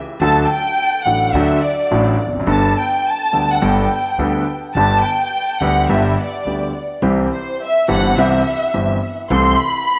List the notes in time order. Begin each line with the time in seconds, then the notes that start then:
0.20 D2 D3 F#3 A3 D4 A4 A5
0.42 A5
0.47 G5
1.02 A1 A2 F#3 A3 F#5
1.06 A1 D4 A4
1.31 D2 D3 F#3 A3 D4 E5
1.36 A4
1.62 D5
1.91 A1 A2 F#3 A3 D4 A4
2.26 E1 E2
2.33 F1 F2
2.40 F#1 F#2
2.47 G1 G2 G3 B3 D4 A4 A5
2.78 G5
3.08 A5
3.33 D2 D3 G3 B3 D4 A4
3.51 F#5
3.62 G1 G2 G3 B3 D4 A4 G5
4.18 D2 D3 G3 B3 D4 A4
4.75 G1 G2 D3 G3 B3 G4 A5
5.03 G5
5.59 D2 D3 G3 B3 G4 F#5
5.88 G1 G2 D3 G3 B3 G4 E5
6.19 D5
6.45 D2 D3 G3 B3 G4
7.02 C2 C3 E3 G3 C4 G4
7.33 C5
7.63 E5
7.88 G1 G2 E3 G3 C4 G4 F#5
8.17 C2 C3 E3 G3 C4 G4 E5
8.74 G1 G2 E3 G3 C4 G4
9.30 C2 C3 E3 A3 C4 A4 C6
9.58 B5